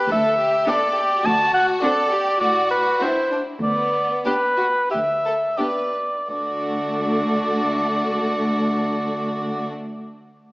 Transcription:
0.10 0.55 D2 medium
0.10 0.38 A4 medium
0.10 0.70 E5 medium
0.38 0.66 G4 soft
0.67 0.75 B3 soft
0.67 0.75 D4 soft
0.67 0.75 G4 soft
0.67 0.96 A4 medium
0.67 1.27 D5 medium
0.97 1.25 G4 medium
1.24 1.70 D2 medium
1.24 1.82 F#4 medium
1.24 1.53 A5 medium
1.54 1.67 F#5 medium
1.81 1.91 C4 soft
1.81 1.90 D4 soft
1.81 1.89 F#4 soft
1.81 2.12 A4 medium
1.81 2.39 D5 medium
2.12 2.41 G4 medium
2.40 2.88 A2 medium
2.40 2.99 F#4 medium
2.40 2.70 D5 medium
2.71 3.04 B4 medium
3.00 3.09 C4 soft
3.00 3.09 D4 soft
3.00 3.31 E4 medium
3.00 3.08 F#4 soft
3.00 3.41 C5 medium
3.32 3.40 D4 soft
3.62 4.12 D2 medium
3.62 4.25 B3 soft
3.62 4.21 D5 medium
4.25 4.34 B3 soft
4.25 4.34 D4 soft
4.25 4.33 G4 soft
4.25 4.34 G4 soft
4.25 4.90 B4 medium
4.58 4.66 F#4 soft
4.90 5.44 D2 soft
4.90 4.98 G4 soft
4.90 5.59 E5 medium
5.25 5.33 A4 soft
5.58 5.66 B3 soft
5.58 5.66 D4 soft
5.58 5.66 G4 soft
5.58 5.93 B4 soft
5.58 6.30 D5 soft
6.30 9.68 D2 soft
6.30 9.68 A3 soft
6.30 9.69 D4 soft
6.30 9.70 F#4 soft
6.30 9.68 D5 soft

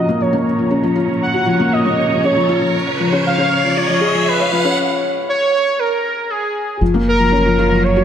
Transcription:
0.00 0.20 F3 medium
0.00 0.09 A#3 medium
0.00 0.71 C#4 medium
0.00 4.78 C#4 medium
0.00 0.95 F4 medium
0.00 1.34 F#4 medium
0.00 0.23 D#5 medium
0.00 3.97 A#5 medium
0.00 riser medium
0.09 0.20 A#3 medium
0.20 0.32 F3 medium
0.20 0.72 C#5 medium
0.33 0.45 A#3 medium
0.42 4.78 C#5 medium
0.59 0.66 F3 medium
0.71 0.83 C#4 medium
0.83 0.96 F3 medium
0.95 1.08 F4 medium
1.08 1.21 F3 medium
1.22 1.74 F#5 loud
1.34 1.42 F#4 medium
1.46 1.59 F3 loud
1.60 1.72 A#3 loud
1.72 1.85 F3 medium
1.72 2.26 D#5 medium
1.86 1.98 A#3 medium
2.11 2.18 F3 medium
2.24 2.36 C#4 medium
2.24 2.75 C#5 medium
2.36 2.48 F3 medium
2.49 2.61 F4 loud
2.61 2.74 F3 medium
2.74 4.78 C#3 medium
2.87 2.94 C#5 medium
3.00 3.12 F3 medium
3.12 3.25 C#4 medium
3.25 3.37 F3 medium
3.25 3.78 F5 loud
3.38 3.50 C#4 medium
3.64 3.71 F3 medium
3.76 3.88 F4 medium
3.76 4.30 C#5 loud
3.81 4.78 G#4 medium
3.89 4.01 F3 medium
4.01 4.13 G#4 loud
4.14 4.26 F3 medium
4.28 4.79 B4 medium
4.40 4.47 C#5 medium
4.52 4.64 F3 loud
4.65 4.77 C#4 loud
5.29 5.81 C#5 loud
5.79 6.32 A#4 loud
6.30 6.81 G#4 medium
6.81 8.04 F#1 medium
6.81 6.93 F3 medium
6.81 8.04 F#3 medium
6.94 7.06 A#3 medium
7.08 7.85 A#4 medium
7.20 7.27 F3 medium
7.32 7.44 C#4 medium
7.45 7.57 F3 loud
7.59 7.70 F4 loud
7.71 7.83 F3 medium
7.84 8.04 C#5 loud
7.96 8.03 F#4 medium

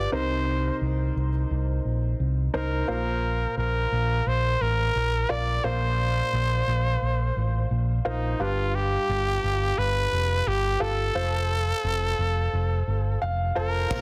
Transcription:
0.00 0.15 F4 medium
0.00 0.14 G4 medium
0.00 0.14 B4 medium
0.00 0.13 D5 medium
0.12 0.69 C2 medium
0.12 1.12 C3 medium
0.12 1.29 D#4 medium
0.12 1.29 A#4 soft
0.12 1.29 C5 medium
0.12 0.78 C5 medium
0.81 1.10 C2 medium
1.16 1.44 C2 medium
1.51 1.79 C2 medium
1.85 2.13 A#1 medium
2.20 2.48 C2 medium
2.54 2.82 C2 medium
2.54 2.83 D#4 medium
2.54 2.83 A#4 medium
2.54 2.87 A#4 medium
2.54 2.83 C5 medium
2.88 3.45 A#1 medium
2.88 3.88 A#2 medium
2.88 4.05 F4 medium
2.88 4.05 A#4 medium
2.88 3.54 A#4 medium
2.88 4.05 C5 medium
3.57 3.85 A#1 medium
3.57 4.29 A#4 medium
3.92 4.20 A#1 medium
4.26 4.55 A#1 medium
4.26 4.63 C5 medium
4.61 4.89 A1 medium
4.61 5.32 A#4 medium
4.95 5.24 A#1 medium
5.29 5.58 A#1 medium
5.29 5.59 F4 medium
5.29 5.59 A#4 soft
5.29 5.59 D5 medium
5.29 5.66 D5 medium
5.64 6.21 A#1 medium
5.64 6.64 A#2 medium
5.64 6.81 F4 medium
5.64 6.81 A#4 medium
5.64 6.81 C5 medium
5.64 7.71 C5 medium
6.33 6.61 A#1 medium
6.67 6.96 A#1 medium
7.02 7.30 A#1 medium
7.36 7.65 A1 medium
7.71 7.99 A#1 medium
8.05 8.34 A#1 medium
8.05 8.43 D#4 medium
8.05 8.34 F4 medium
8.05 8.34 A#4 medium
8.05 8.35 C5 medium
8.39 8.96 G1 medium
8.39 9.39 G2 medium
8.39 9.56 F4 medium
8.39 8.77 F4 medium
8.39 9.57 G4 medium
8.39 9.57 B4 medium
8.75 9.80 G4 medium
9.09 9.37 G1 medium
9.43 9.72 G1 medium
9.78 10.06 G1 medium
9.78 10.49 B4 loud
10.12 10.40 F1 medium
10.47 10.75 G1 medium
10.47 10.83 G4 medium
10.80 11.09 G1 medium
10.80 11.10 F4 medium
10.80 11.10 G4 medium
10.80 11.10 A4 medium
10.80 13.22 A4 medium
11.15 11.72 F1 medium
11.15 12.32 F4 medium
11.15 12.32 A4 medium
11.15 12.32 C5 medium
11.84 12.12 F1 medium
12.18 12.47 F1 medium
12.53 12.81 F1 medium
12.87 13.16 G1 medium
13.22 13.50 F1 medium
13.22 13.54 F5 medium
13.55 13.85 F1 medium
13.55 13.85 F4 medium
13.55 13.85 A4 medium
13.55 14.01 A#4 medium
13.55 13.85 C5 medium
13.55 13.88 A5 medium
13.90 14.01 A#1 medium
13.90 14.01 A#2 medium
13.90 14.01 C3 medium
13.90 14.01 F4 medium
13.90 14.01 A#4 medium
13.90 14.01 C5 medium
13.90 kick loud
13.90 crash medium

